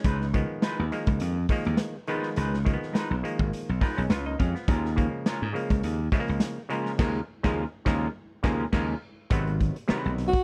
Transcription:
Already playing: G#3 C#4
0.04 C#2 G#3 D#4 F4 B4, kick, closed hi-hat
0.21 snare
0.34 D#3 F3 G#3 B3, kick, closed hi-hat
0.62 G#3 D#4 F4 B4, snare, closed hi-hat
0.79 D#2
0.92 D#3 F3 G#3 A#3, snare, closed hi-hat
1.07 C#2, kick, closed hi-hat
1.20 F2, closed hi-hat
1.49 D#3 F3 G#3 A#3, kick, snare, open hi-hat
1.65 D#2, closed hi-hat
1.77 snare, closed hi-hat
2.07 D#3 F3 G#3 B3 D#4 F4 B4, closed hi-hat
2.23 snare
2.36 C#2 G#3 D#4 F4 B4, closed hi-hat
2.54 snare
2.65 D#3 F3 G#3 A#3, kick, closed hi-hat
2.73 B3
2.83 snare
2.93 G#3 D#4 F4 B4, snare, closed hi-hat
3.11 B1
3.23 D#3 F3 G#3 A#3, closed hi-hat
3.39 G#1, kick
3.53 muted slap bass stroke, closed hi-hat
3.69 B1
3.81 F3 G#3 B3 D#4 F4 A#4 B4, kick, snare, open hi-hat
3.97 B1 G#3 C#4, closed hi-hat
4.10 C#2 B3 F4 B4, snare, closed hi-hat
4.26 A#3 D#4 D#5
4.39 F2 G#3 C#4 F5, kick, closed hi-hat
4.55 F3 B3, snare
4.68 D#2 G#3 C#4 F4 A#4, kick, closed hi-hat
4.85 snare
4.96 C#3 F3 G#3 A#3, kick, closed hi-hat
5.26 G#3 C#4 F4 A#4, snare, closed hi-hat
5.42 G#2
5.53 C#3 F3 G#3 A#3, closed hi-hat
5.70 C#2, kick, closed hi-hat
5.83 D#2, closed hi-hat
6.12 C#3 F3 G#3 A3, kick, snare, open hi-hat
6.20 A#3
6.28 C#2, closed hi-hat
6.40 snare, closed hi-hat
6.69 C#3 F3 G#3 A#3 C#4 F4 A#4, closed hi-hat
6.86 snare
6.98 D#2 C#3 F3 G#3 A#3 C#4 F4 A#4, kick, snare, crash
7.43 D#2 C#3 F3 G#3 A#3 C#4 F4 A#4, kick, snare
7.85 D#2 C#3 F3 G#3 A#3 C#4 F4 A#4, kick, snare
8.43 D#2 C#3 F3 G#3 A#3 C#4 F4 A#4, kick, snare
8.72 D#2 C#3 F3 G#3 A#3 C#4 F4 A#4, kick, snare, crash
9.30 G#1 C3 D#3 F#3 G#3 B3 C4 F#4 B4, kick, closed hi-hat
9.47 closed hi-hat
9.60 kick, closed hi-hat
9.76 closed hi-hat
9.88 C3 D#3 F#3 G#3 B3 C4 F#4 B4, muted slap bass stroke, snare
10.05 B1, closed hi-hat
10.18 snare, closed hi-hat
10.28 F#4
10.33 kick, closed hi-hat

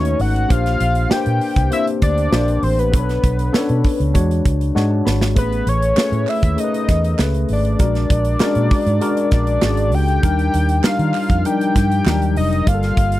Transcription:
Already playing: D#2 A3 C#4 D#4 F#4 B4 C#5
0.05 closed hi-hat
0.19 G#1 F#5, open hi-hat
0.36 closed hi-hat
0.48 A#1 A#3 D4 G4 C5 F5, kick, closed hi-hat
0.66 snare, closed hi-hat
0.80 A#1, closed hi-hat
0.95 closed hi-hat
1.09 A#3 D4 G4 B4 G5, snare
1.17 C5
1.26 A#2, closed hi-hat
1.41 open hi-hat
1.56 C2, kick, closed hi-hat
1.70 A#3 C4 G4 C5 E5, closed hi-hat
1.77 D4
1.87 closed hi-hat
2.02 D2 D5, kick, closed hi-hat
2.18 closed hi-hat
2.31 A#1 A#3 D4 G4 C5, snare
2.48 closed hi-hat
2.63 A1 C5, open hi-hat
2.79 B4, closed hi-hat
2.91 B1 B3 D4 A4 B4, kick, closed hi-hat
2.99 C#5
3.09 snare, closed hi-hat
3.24 B1, kick, closed hi-hat
3.39 closed hi-hat
3.53 B3 C#4 A4 C#5, snare
3.60 D4
3.69 B2, closed hi-hat
3.84 kick, open hi-hat
4.00 C#2, closed hi-hat
4.14 E2 G#3 D4 F#4 C#5, kick, closed hi-hat
4.31 closed hi-hat
4.45 C#2, kick, closed hi-hat
4.61 closed hi-hat
4.75 G#2 G#3 D4 F#4 C#5 F#5, snare
4.90 A5
5.05 G#1 B5, snare
5.21 snare
5.35 A1 A3 C4 G#4 B4, kick, closed hi-hat
5.42 C#4
5.53 closed hi-hat
5.67 A1 C#5, closed hi-hat
5.82 closed hi-hat
5.96 A3 C#4 G#4 B4, snare, clap
6.04 C#5
6.12 A2, closed hi-hat
6.27 E5, clap, open hi-hat
6.43 D#2, kick, closed hi-hat
6.57 A3 C#4 G#4 A#4 D#5, closed hi-hat
6.64 B4
6.74 closed hi-hat
6.89 E2, kick, snare, closed hi-hat
7.04 closed hi-hat
7.18 C#2 A3 C#4 G#4 B4, snare, clap
7.34 closed hi-hat
7.49 G#1, open hi-hat
7.53 D5
7.65 closed hi-hat
7.79 A#1 G#3 C#4 F#4 A#4, kick, closed hi-hat
7.86 D4
7.95 snare, closed hi-hat
8.10 A#1, kick, closed hi-hat
8.25 closed hi-hat
8.40 G#3 C#4 F#4 A#4, snare, clap
8.47 D4
8.55 A#2, closed hi-hat
8.71 kick, open hi-hat
8.86 G#2, closed hi-hat
9.00 G#3 D4 F#4 A#4, closed hi-hat
9.17 closed hi-hat
9.31 A#1 D5, kick, snare, closed hi-hat
9.47 closed hi-hat
9.62 G#1 G#3 C#4 F#4 G#4, snare, clap
9.68 D4
9.77 closed hi-hat
9.92 C#2 G5, open hi-hat
10.08 closed hi-hat
10.23 D#2 G3 D4 D#4 A#4, kick, closed hi-hat
10.39 closed hi-hat
10.54 D#2, closed hi-hat
10.69 closed hi-hat
10.84 G3 D4 D#4 A#4 F5, muted fingered electric bass stroke, snare, clap
10.99 D#3, closed hi-hat
11.14 clap, open hi-hat
11.30 F2, kick, closed hi-hat
11.45 F3 D4 D#4 A#4 G5, closed hi-hat
11.51 G3
11.61 closed hi-hat
11.76 G2, kick, snare, closed hi-hat
11.92 closed hi-hat
12.05 D#2 F#3 D4 D#4 A#4, snare, clap
12.12 G3
12.22 closed hi-hat
12.36 F1 D#5, open hi-hat
12.53 closed hi-hat
12.66 G1 G3 A#3 F4 G4 F5, kick, closed hi-hat
12.74 A4
12.83 snare, closed hi-hat
12.97 G1, kick, closed hi-hat
13.12 closed hi-hat

